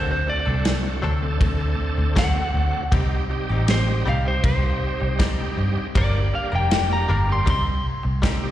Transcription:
Already playing: fingered electric bass D2, clean electric guitar F#3 C4 D4 A4, tonewheel organ A3 C4 D4 F#4
0.12 lead electric guitar C5
0.27 tonewheel organ A3 C4 D4 F#4, lead electric guitar D5, muted clean electric guitar stroke
0.46 fingered electric bass C2, clean electric guitar C4 D4 A4
0.65 muted clean electric guitar stroke, snare, ride bell
0.84 muted clean electric guitar stroke
1.02 fingered electric bass D2, clean electric guitar F#3 C4 D4 A4
1.22 tonewheel organ A3 C4 D4 A4, muted clean electric guitar stroke
1.41 fingered electric bass D2, kick, ride bell
1.60 muted clean electric guitar stroke
1.79 muted fingered electric bass stroke
1.98 fingered electric bass D2, muted clean electric guitar stroke
2.16 clean electric guitar F#3 C4 D4 A4, lead electric guitar F#5, kick, snare, ride bell
2.35 tonewheel organ A3 C4 D4 F#4
2.54 fingered electric bass D2, muted clean electric guitar stroke
2.73 muted clean electric guitar stroke
2.92 fingered electric bass C2, tonewheel organ G3 C4 D#4 G4, clean electric guitar G3 C4 D#4 G4, kick, ride bell
3.29 tonewheel organ G3 C4 D#4 G4, muted clean electric guitar stroke
3.50 fingered electric bass A1, clean electric guitar C4 D#4 G4
3.68 lead electric guitar C5, muted clean electric guitar stroke, snare, ride bell
3.88 muted clean electric guitar stroke
4.06 fingered electric bass C2, clean electric guitar G3 C4 D#4 G4, lead electric guitar F5
4.25 tonewheel organ G3 C4 D#4 G4, lead electric guitar C5, muted clean electric guitar stroke
4.44 fingered electric bass C2, lead electric guitar C5, kick, ride bell
4.63 muted clean electric guitar stroke
4.82 muted fingered electric bass stroke
5.01 fingered electric bass C2, muted clean electric guitar stroke
5.19 clean electric guitar G3 C4 D#4 G4, kick, snare, ride bell
5.39 tonewheel organ G3 C4 D#4 G4
5.57 fingered electric bass G2, muted clean electric guitar stroke
5.77 muted clean electric guitar stroke
5.95 fingered electric bass G1, tonewheel organ G3 A#3 D4 G4, clean electric guitar G3 A#3 D4 A#4, lead electric guitar D5, kick, ride bell
6.33 tonewheel organ G3 A#3 D4 G4, lead electric guitar F5, muted clean electric guitar stroke
6.52 fingered electric bass F1, clean electric guitar A#3 D4 A#4, lead electric guitar G5
6.70 muted clean electric guitar stroke, snare, ride bell
6.90 lead electric guitar A#5, muted clean electric guitar stroke
7.09 fingered electric bass G1, clean electric guitar G3 A#3 D4 A#4
7.28 tonewheel organ G3 A#3 D4 G4, muted clean electric guitar stroke
7.32 lead electric guitar C6
7.46 fingered electric bass C2, clean electric guitar G3 C4 D#4 G4, kick, ride bell
7.50 lead electric guitar C6
7.66 muted clean electric guitar stroke
7.86 muted fingered electric bass stroke
8.03 fingered electric bass C2, muted clean electric guitar stroke
8.22 clean electric guitar G3 C4 D#4 G4, kick, snare, ride bell
8.43 tonewheel organ G3 C4 D#4 G4

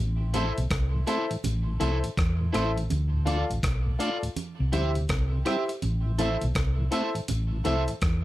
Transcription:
0.00 fingered electric bass A1
0.21 tonewheel organ A2 E3
0.34 tonewheel organ A3 C4 E4, grand piano E4 A4 C5 E5, clean electric guitar E4 A4 C5, closed hi-hat, low conga
0.57 fingered electric bass B1, tonewheel organ A2 E3, closed hi-hat
0.71 fingered electric bass C2, kick, cross-stick, closed hi-hat
0.94 tonewheel organ A2 E3
1.07 tonewheel organ A3 C4 E4, clean electric guitar E4 A4 C5, grand piano E4 A4 C5 E5, closed hi-hat
1.30 tonewheel organ A2 E3, closed hi-hat
1.44 fingered electric bass A1, closed hi-hat, low conga
1.67 tonewheel organ A2 E3
1.80 fingered electric bass C2, tonewheel organ A3 C4 E4, grand piano E4 A4 C5 E5, clean electric guitar E4 A4 C5, closed hi-hat, low conga
2.03 tonewheel organ A2 E3, muted clean electric guitar stroke, closed hi-hat
2.17 fingered electric bass E2, kick, cross-stick, closed hi-hat
2.40 tonewheel organ A2 E3
2.53 fingered electric bass A1, tonewheel organ A3 C4 E4, clean electric guitar E4 A4 C5, grand piano E4 A4 C5 E5, cross-stick, closed hi-hat
2.77 tonewheel organ A2 E3, closed hi-hat
2.90 fingered electric bass D2, closed hi-hat, low conga
3.13 tonewheel organ D2 A2
3.25 tonewheel organ A3 D4 F4, grand piano F4 A4 D5 F5, clean electric guitar F4 A4 D5, closed hi-hat, low conga
3.50 fingered electric bass A1, tonewheel organ D2 A2, closed hi-hat
3.63 fingered electric bass B1, kick, cross-stick, closed hi-hat
3.86 tonewheel organ D2 A2
3.99 tonewheel organ A3 D4 F4, grand piano F4 A4 D5 F5, clean electric guitar F4 A4 D5, closed hi-hat
4.23 tonewheel organ D2 A2, closed hi-hat
4.36 closed hi-hat, low conga
4.59 fingered electric bass C2, tonewheel organ C3
4.72 fingered electric bass D2, tonewheel organ G3 C4 E4, grand piano E4 G4 C5 E5, clean electric guitar G4 C5 E5, closed hi-hat, low conga
4.95 tonewheel organ C3, closed hi-hat
5.09 fingered electric bass C2, kick, cross-stick, closed hi-hat
5.33 tonewheel organ C3
5.45 tonewheel organ G3 C4 E4, grand piano E4 G4 C5 E5, clean electric guitar G4 C5 E5, cross-stick, closed hi-hat
5.68 muted clean electric guitar stroke, closed hi-hat
5.82 fingered electric bass A1, closed hi-hat, low conga
6.06 tonewheel organ A2 E3
6.18 tonewheel organ A3 C4 E4, grand piano E4 A4 C5 E5, clean electric guitar A4 C5 E5, closed hi-hat, low conga
6.41 fingered electric bass B1, tonewheel organ A2 E3, closed hi-hat
6.55 fingered electric bass C2, kick, cross-stick, closed hi-hat
6.78 tonewheel organ A2 E3
6.91 tonewheel organ A3 C4 E4, grand piano E4 A4 C5 E5, clean electric guitar A4 C5 E5, closed hi-hat
7.15 tonewheel organ A2 E3, closed hi-hat
7.28 fingered electric bass A1, closed hi-hat, low conga
7.52 tonewheel organ A2 E3
7.64 fingered electric bass C2, tonewheel organ A3 C4 E4, grand piano E4 A4 C5 E5, clean electric guitar A4 C5 E5, closed hi-hat, low conga
7.88 tonewheel organ A2 E3, muted clean electric guitar stroke, closed hi-hat
8.02 fingered electric bass E2, kick, cross-stick, closed hi-hat

